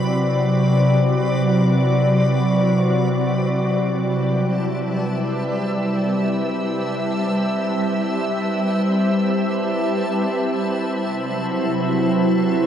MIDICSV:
0, 0, Header, 1, 3, 480
1, 0, Start_track
1, 0, Tempo, 500000
1, 12158, End_track
2, 0, Start_track
2, 0, Title_t, "Synth texture"
2, 0, Program_c, 0, 99
2, 0, Note_on_c, 0, 83, 89
2, 3771, Note_on_c, 0, 81, 88
2, 3791, Note_off_c, 0, 83, 0
2, 12158, Note_off_c, 0, 81, 0
2, 12158, End_track
3, 0, Start_track
3, 0, Title_t, "Ambient pad"
3, 0, Program_c, 1, 92
3, 0, Note_on_c, 1, 48, 88
3, 0, Note_on_c, 1, 54, 78
3, 0, Note_on_c, 1, 60, 83
3, 0, Note_on_c, 1, 64, 73
3, 0, Note_on_c, 1, 71, 80
3, 0, Note_on_c, 1, 74, 94
3, 3775, Note_off_c, 1, 64, 0
3, 3775, Note_off_c, 1, 71, 0
3, 3778, Note_off_c, 1, 60, 0
3, 3780, Note_off_c, 1, 54, 0
3, 3782, Note_off_c, 1, 48, 0
3, 3784, Note_on_c, 1, 55, 90
3, 4043, Note_on_c, 1, 64, 87
3, 4185, Note_on_c, 1, 60, 80
3, 4392, Note_on_c, 1, 71, 88
3, 4598, Note_on_c, 1, 76, 80
3, 6495, Note_off_c, 1, 74, 0
3, 10557, Note_off_c, 1, 55, 0
3, 10561, Note_on_c, 1, 48, 90
3, 10647, Note_on_c, 1, 54, 79
3, 12158, Note_off_c, 1, 48, 0
3, 12158, Note_off_c, 1, 54, 0
3, 12158, Note_off_c, 1, 60, 0
3, 12158, Note_off_c, 1, 64, 0
3, 12158, Note_off_c, 1, 71, 0
3, 12158, Note_off_c, 1, 76, 0
3, 12158, End_track
0, 0, End_of_file